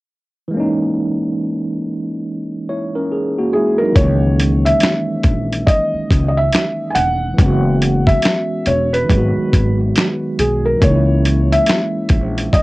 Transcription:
0.48 3.90 E3 medium
0.48 2.62 G#3 medium
0.54 2.64 A#3 medium
0.54 2.66 C#4 medium
0.60 2.67 D#4 medium
2.69 2.94 E4 soft
2.69 2.93 C#5 medium
2.95 3.10 C#4 soft
2.95 3.10 A#4 medium
3.12 3.36 G#4 medium
3.38 3.54 A#3 medium
3.38 3.53 F#4 medium
3.53 3.80 G#3 soft
3.53 3.79 E4 medium
3.53 3.80 G#4 medium
3.78 4.21 F#3 soft
3.78 4.21 D#4 medium
3.78 3.94 A#4 medium
3.92 7.33 E3 medium
3.92 7.34 G#3 medium
3.92 4.67 C#5 medium
3.92 kick loud
3.96 4.69 C#2 loud
3.96 7.36 A#3 medium
3.96 closed hi-hat medium
4.01 7.39 D#3 medium
4.01 7.37 C#4 medium
4.40 closed hi-hat medium
4.65 5.71 E5 medium
4.65 closed hi-hat soft
4.80 snare loud
4.80 closed hi-hat medium
4.85 finger snap medium
5.24 5.61 A#1 medium
5.24 kick medium
5.24 closed hi-hat medium
5.53 closed hi-hat soft
5.67 6.27 D#5 medium
5.67 kick medium
5.67 closed hi-hat medium
5.94 muted upright bass stroke soft
6.11 6.47 C#2 medium
6.11 kick medium
6.11 closed hi-hat medium
6.28 6.37 D#5 medium
6.37 6.87 E5 medium
6.52 finger snap medium
6.52 snare loud
6.52 closed hi-hat medium
6.90 6.96 G#5 medium
6.95 7.32 E1 medium
6.95 8.04 F#5 loud
6.95 closed hi-hat medium
7.34 9.04 E3 medium
7.34 9.06 G#3 medium
7.38 8.12 F#1 loud
7.38 9.07 B3 medium
7.38 kick loud
7.38 closed hi-hat medium
7.43 9.09 C#4 medium
7.43 9.11 F#4 medium
7.82 closed hi-hat medium
8.07 8.69 E5 loud
8.07 kick medium
8.07 closed hi-hat soft
8.22 snare loud
8.22 closed hi-hat medium
8.27 finger snap medium
8.66 9.04 E1 medium
8.66 8.92 C#5 medium
8.66 closed hi-hat medium
8.93 9.75 B4 medium
8.93 closed hi-hat soft
9.06 10.76 D#3 medium
9.06 10.77 G#3 medium
9.10 9.33 G#1 medium
9.10 10.79 F#3 medium
9.10 kick medium
9.10 closed hi-hat medium
9.15 10.81 B3 medium
9.15 10.82 F#4 medium
9.36 muted upright bass stroke soft
9.53 9.90 G#1 medium
9.53 kick medium
9.53 closed hi-hat medium
9.96 finger snap medium
9.96 snare loud
9.96 closed hi-hat medium
10.39 10.76 B1 medium
10.39 10.64 G#4 medium
10.39 closed hi-hat medium
10.65 10.82 A#4 medium
10.77 12.63 E3 medium
10.77 12.63 G#3 medium
10.82 11.55 C#2 loud
10.82 12.63 A#3 medium
10.82 11.54 C#5 medium
10.82 kick loud
10.82 closed hi-hat medium
10.86 12.63 C#4 medium
10.86 10.93 D#4 medium
10.96 12.63 E4 medium
11.25 closed hi-hat medium
11.52 12.57 E5 medium
11.52 closed hi-hat soft
11.66 snare loud
11.66 closed hi-hat medium
11.71 finger snap medium
12.09 12.47 A#1 medium
12.09 kick medium
12.09 closed hi-hat medium
12.38 closed hi-hat soft
12.53 12.63 D#5 medium
12.53 kick medium
12.53 closed hi-hat medium

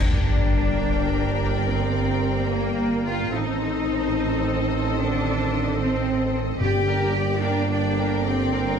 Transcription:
0.00 3.28 G1 medium
0.00 3.28 G3 medium
0.00 3.28 A#3 medium
0.00 1.50 D4 medium
0.00 1.68 D4 medium
0.00 3.28 A#4 medium
0.00 3.28 D5 medium
0.00 3.29 G5 medium
0.00 concert bass drum medium
0.00 crash medium
0.00 sub drop medium
1.68 2.48 C4 medium
2.50 3.05 A#3 medium
3.06 3.32 F4 medium
3.06 3.34 F4 medium
3.31 6.62 A1 medium
3.31 6.61 D#3 medium
3.31 6.61 C4 medium
3.31 4.98 D#4 medium
3.31 4.95 D#4 medium
3.31 6.58 A4 medium
3.31 6.58 C5 medium
3.31 6.58 D#5 medium
4.98 5.79 D3 medium
4.98 5.78 D4 medium
5.80 6.33 C4 medium
5.80 6.35 C4 medium
6.60 8.79 G1 medium
6.60 7.40 G2 medium
6.60 8.79 D3 medium
6.60 8.79 A#3 medium
6.60 6.86 G4 medium
6.60 7.40 G4 medium
6.60 7.40 G4 loud
6.60 6.87 D5 medium
6.60 6.87 G5 medium
6.87 7.16 A#4 medium
6.87 7.17 D5 medium
6.87 7.16 G5 medium
7.14 7.43 G4 medium
7.14 7.44 D5 medium
7.14 7.44 G5 medium
7.43 8.26 D4 medium
7.43 8.28 D4 medium
7.43 7.71 A#4 medium
7.43 7.72 D5 medium
7.43 7.72 G5 medium
7.70 7.96 G4 medium
7.70 7.98 D5 medium
7.70 7.98 G5 medium
7.98 8.26 A#4 medium
7.98 8.28 D5 medium
7.98 8.26 G5 medium
8.26 8.79 C4 medium
8.26 8.54 G4 medium
8.26 8.55 D5 medium
8.26 8.55 G5 medium
8.53 8.79 A#4 medium
8.53 8.79 D5 medium
8.53 8.79 G5 medium

